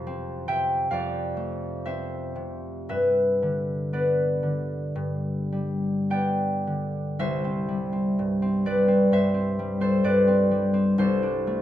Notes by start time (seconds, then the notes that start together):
Already playing: F2 C3 F5 A5
0.07 C4
0.48 C3 E5 G5
0.91 F2 D5 F5
1.37 A3
1.86 C4 C5 E5
2.36 C3
2.89 G2 B4 E5
3.42 D3
3.93 B3 B4 D5
4.43 D3
4.95 G2
5.52 G3
6.10 B3 D5 G5
6.67 D3
7.19 C2 C5 E5
7.44 C4
7.68 G3
7.92 C4
8.19 G2
8.42 C4
8.66 G3 B4 D5
8.88 C4
9.12 G2 C5 E5
9.34 C4
9.59 G3
9.80 C4 A4 C5
10.04 G2 B4 D5
10.27 C4
10.51 G3
10.74 C4
10.98 C2 A4 C5
11.23 D4
11.47 A3